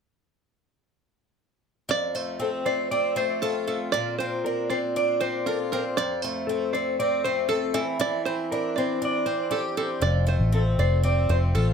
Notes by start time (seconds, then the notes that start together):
1.89 F2 D5
2.15 A3 C5
2.40 C4 A4
2.65 A3 C5 D5
2.91 C4 D5
3.16 A3 C5
3.42 F4 A4
3.67 A3 A4
3.92 A#2 D5
4.18 C4 C5
4.45 D4 A#4
4.70 C4 C5 D5
4.96 D4 D5
5.20 C4 C5
5.46 F4 A4 A#4
5.72 C4 A#4
5.97 F2 D5
6.22 A3 C5
6.47 C4 A4
6.73 A3 C5 D5
6.99 C4 D5
7.24 A3 C5
7.49 A4
7.74 E3 A4
7.99 E3 D5
8.25 C4 C5
8.52 D4 A#4
8.76 C4 C5 D5
9.02 D4 D5
9.26 C4 C5
9.51 G4 A4
9.77 C4 A4
10.02 F1 F2 D5
10.27 A3 C5
10.39 A1
10.52 C4 A4
10.78 F1 A3 C5 D5
11.03 C4 D5
11.29 F1 A3 C5
11.55 A1 F4 A4